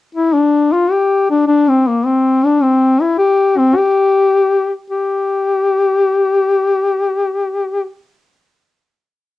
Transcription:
0.15 E4
0.33 D4
0.72 F4
0.91 G4
1.30 D4
1.47 D4
1.68 C4
1.87 A#3
2.06 C4
2.45 D4
2.62 C4
3.01 E4
3.19 G4
3.58 C4
3.76 G4
4.90 G4

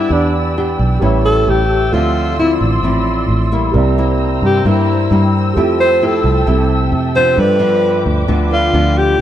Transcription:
Already playing: B3 D4 E4 G4 B4 D5 E5 B5 E6
0.09 E2 E3 D4 G4 B4
0.13 D5 F#5
0.57 B3 D4 G4
0.79 B1
1.00 A1 A2 G3 C#4 E4 G4 B4 C#5 A5 E6
1.06 E5
1.25 A4
1.47 A1 G4
1.92 D2 D3 F3 C4 F4 A4 C5 D5 E5 C6
2.38 F3 C4 E4
2.60 A1
2.83 A1 A2 F3 C4 E4
3.29 A1
3.52 G3 A#3 E4
3.72 C2 C3 G4 A#4 C5 G5 A#5 E6
3.76 D5 E5
3.98 G3 A#3 E4
4.42 G2 G4
4.65 G2 G3 A#3 E4
5.11 G2 G3 A#3 E4
5.54 F2 F3 A3 E4 G4 A4 C5 E5
5.58 G4 E5
5.80 C5
6.02 A3 E4 G4 A4
6.24 C2
6.47 C2 C3 A3 E4 G4
6.92 F2
7.15 F3 B3 D4 C5
7.35 G2 F4 A4 B4 D6
7.40 B4 D5
7.59 F3 B3 D4
8.06 D2
8.28 D2 D3 F3 B3 D4
8.50 F4 A4 B4 D5
8.73 D2 F3 B3 D4
8.98 G4
9.17 E4

